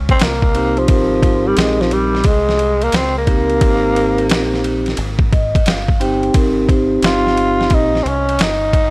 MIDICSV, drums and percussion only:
0, 0, Header, 1, 2, 480
1, 0, Start_track
1, 0, Key_signature, -4, "major"
1, 0, Tempo, 681818
1, 626, Time_signature, 4, 2, 24, 8
1, 6268, End_track
2, 0, Start_track
2, 0, Title_t, "Drums"
2, 62, Note_on_c, 9, 51, 44
2, 63, Note_on_c, 9, 36, 97
2, 132, Note_off_c, 9, 51, 0
2, 134, Note_off_c, 9, 36, 0
2, 137, Note_on_c, 9, 44, 62
2, 137, Note_on_c, 9, 51, 86
2, 152, Note_on_c, 9, 38, 110
2, 207, Note_off_c, 9, 44, 0
2, 207, Note_off_c, 9, 51, 0
2, 222, Note_off_c, 9, 38, 0
2, 298, Note_on_c, 9, 36, 78
2, 369, Note_off_c, 9, 36, 0
2, 385, Note_on_c, 9, 51, 58
2, 455, Note_off_c, 9, 51, 0
2, 542, Note_on_c, 9, 51, 33
2, 612, Note_off_c, 9, 51, 0
2, 620, Note_on_c, 9, 51, 88
2, 623, Note_on_c, 9, 36, 122
2, 691, Note_off_c, 9, 51, 0
2, 693, Note_off_c, 9, 36, 0
2, 863, Note_on_c, 9, 36, 97
2, 866, Note_on_c, 9, 51, 61
2, 933, Note_off_c, 9, 36, 0
2, 936, Note_off_c, 9, 51, 0
2, 1103, Note_on_c, 9, 44, 56
2, 1103, Note_on_c, 9, 51, 87
2, 1116, Note_on_c, 9, 38, 122
2, 1173, Note_off_c, 9, 44, 0
2, 1173, Note_off_c, 9, 51, 0
2, 1186, Note_off_c, 9, 38, 0
2, 1275, Note_on_c, 9, 38, 37
2, 1345, Note_off_c, 9, 38, 0
2, 1346, Note_on_c, 9, 51, 57
2, 1417, Note_off_c, 9, 51, 0
2, 1511, Note_on_c, 9, 38, 36
2, 1575, Note_on_c, 9, 51, 79
2, 1581, Note_on_c, 9, 36, 93
2, 1582, Note_off_c, 9, 38, 0
2, 1645, Note_off_c, 9, 51, 0
2, 1651, Note_off_c, 9, 36, 0
2, 1752, Note_on_c, 9, 38, 35
2, 1822, Note_off_c, 9, 38, 0
2, 1824, Note_on_c, 9, 51, 52
2, 1894, Note_off_c, 9, 51, 0
2, 1982, Note_on_c, 9, 51, 46
2, 2053, Note_off_c, 9, 51, 0
2, 2058, Note_on_c, 9, 44, 61
2, 2058, Note_on_c, 9, 51, 88
2, 2073, Note_on_c, 9, 38, 115
2, 2128, Note_off_c, 9, 44, 0
2, 2128, Note_off_c, 9, 51, 0
2, 2143, Note_off_c, 9, 38, 0
2, 2303, Note_on_c, 9, 36, 79
2, 2303, Note_on_c, 9, 51, 55
2, 2373, Note_off_c, 9, 51, 0
2, 2374, Note_off_c, 9, 36, 0
2, 2461, Note_on_c, 9, 51, 37
2, 2531, Note_off_c, 9, 51, 0
2, 2542, Note_on_c, 9, 51, 94
2, 2544, Note_on_c, 9, 36, 118
2, 2613, Note_off_c, 9, 51, 0
2, 2614, Note_off_c, 9, 36, 0
2, 2790, Note_on_c, 9, 51, 60
2, 2861, Note_off_c, 9, 51, 0
2, 2945, Note_on_c, 9, 51, 38
2, 3015, Note_off_c, 9, 51, 0
2, 3024, Note_on_c, 9, 44, 58
2, 3024, Note_on_c, 9, 51, 87
2, 3037, Note_on_c, 9, 38, 125
2, 3094, Note_off_c, 9, 44, 0
2, 3094, Note_off_c, 9, 51, 0
2, 3107, Note_off_c, 9, 38, 0
2, 3193, Note_on_c, 9, 38, 35
2, 3263, Note_off_c, 9, 38, 0
2, 3269, Note_on_c, 9, 51, 57
2, 3339, Note_off_c, 9, 51, 0
2, 3422, Note_on_c, 9, 51, 43
2, 3435, Note_on_c, 9, 38, 37
2, 3492, Note_off_c, 9, 51, 0
2, 3499, Note_on_c, 9, 51, 79
2, 3506, Note_off_c, 9, 38, 0
2, 3570, Note_off_c, 9, 51, 0
2, 3652, Note_on_c, 9, 36, 94
2, 3722, Note_off_c, 9, 36, 0
2, 3749, Note_on_c, 9, 36, 91
2, 3750, Note_on_c, 9, 51, 53
2, 3820, Note_off_c, 9, 36, 0
2, 3820, Note_off_c, 9, 51, 0
2, 3908, Note_on_c, 9, 36, 93
2, 3912, Note_on_c, 9, 51, 50
2, 3978, Note_off_c, 9, 36, 0
2, 3982, Note_off_c, 9, 51, 0
2, 3984, Note_on_c, 9, 44, 69
2, 3984, Note_on_c, 9, 51, 88
2, 3998, Note_on_c, 9, 38, 108
2, 4054, Note_off_c, 9, 44, 0
2, 4054, Note_off_c, 9, 51, 0
2, 4069, Note_off_c, 9, 38, 0
2, 4142, Note_on_c, 9, 36, 88
2, 4213, Note_off_c, 9, 36, 0
2, 4230, Note_on_c, 9, 51, 60
2, 4301, Note_off_c, 9, 51, 0
2, 4387, Note_on_c, 9, 51, 36
2, 4457, Note_off_c, 9, 51, 0
2, 4465, Note_on_c, 9, 51, 89
2, 4466, Note_on_c, 9, 36, 111
2, 4535, Note_off_c, 9, 51, 0
2, 4537, Note_off_c, 9, 36, 0
2, 4707, Note_on_c, 9, 36, 92
2, 4712, Note_on_c, 9, 51, 55
2, 4778, Note_off_c, 9, 36, 0
2, 4782, Note_off_c, 9, 51, 0
2, 4945, Note_on_c, 9, 44, 58
2, 4945, Note_on_c, 9, 51, 81
2, 4959, Note_on_c, 9, 38, 116
2, 5016, Note_off_c, 9, 44, 0
2, 5016, Note_off_c, 9, 51, 0
2, 5029, Note_off_c, 9, 38, 0
2, 5115, Note_on_c, 9, 38, 37
2, 5185, Note_off_c, 9, 38, 0
2, 5192, Note_on_c, 9, 51, 55
2, 5262, Note_off_c, 9, 51, 0
2, 5356, Note_on_c, 9, 38, 34
2, 5421, Note_on_c, 9, 51, 68
2, 5425, Note_on_c, 9, 36, 92
2, 5426, Note_off_c, 9, 38, 0
2, 5491, Note_off_c, 9, 51, 0
2, 5496, Note_off_c, 9, 36, 0
2, 5598, Note_on_c, 9, 38, 33
2, 5669, Note_off_c, 9, 38, 0
2, 5675, Note_on_c, 9, 51, 49
2, 5745, Note_off_c, 9, 51, 0
2, 5834, Note_on_c, 9, 51, 45
2, 5905, Note_off_c, 9, 51, 0
2, 5906, Note_on_c, 9, 44, 60
2, 5906, Note_on_c, 9, 51, 88
2, 5920, Note_on_c, 9, 38, 102
2, 5976, Note_off_c, 9, 44, 0
2, 5976, Note_off_c, 9, 51, 0
2, 5991, Note_off_c, 9, 38, 0
2, 6148, Note_on_c, 9, 36, 80
2, 6150, Note_on_c, 9, 51, 61
2, 6219, Note_off_c, 9, 36, 0
2, 6220, Note_off_c, 9, 51, 0
2, 6268, End_track
0, 0, End_of_file